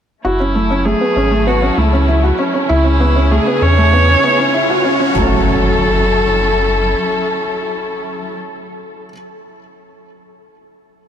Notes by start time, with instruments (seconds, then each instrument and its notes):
0.24 sub bass F#1, string section F#3 A3 C#4 E4, viola E4, felt piano F#4, riser
0.40 felt piano C#4
0.55 felt piano A3
0.70 felt piano C#4
0.85 felt piano A3, viola G#4
1.01 felt piano B3
1.16 sub bass G#1, felt piano C#4
1.32 felt piano A3
1.47 felt piano B3, viola F#4
1.62 felt piano C#4
1.77 sub bass C#2, felt piano A3, viola E4
1.93 felt piano C#4
2.08 felt piano E4
2.23 felt piano F#4
2.39 felt piano C#4
2.54 felt piano C#4
2.69 sub bass C#2, string section C#3 G#4, felt piano E4, viola E4
2.85 felt piano C#4
3.00 felt piano B3
3.16 felt piano C#4
3.31 felt piano A3, viola G#4
3.47 felt piano B3
3.62 sub bass E2, felt piano C#4, viola C#5
3.78 felt piano A3
3.93 felt piano B3
4.09 felt piano C#4
4.24 felt piano B3
4.40 felt piano C#4
4.54 felt piano E4
4.70 felt piano F#4
4.84 felt piano C#4
5.00 felt piano C#4
5.14 sub bass F#1, string section F#3 C#4 E4 A4, felt piano F#3, viola A4, impact
5.19 felt piano A3 C#4
5.27 felt piano F#4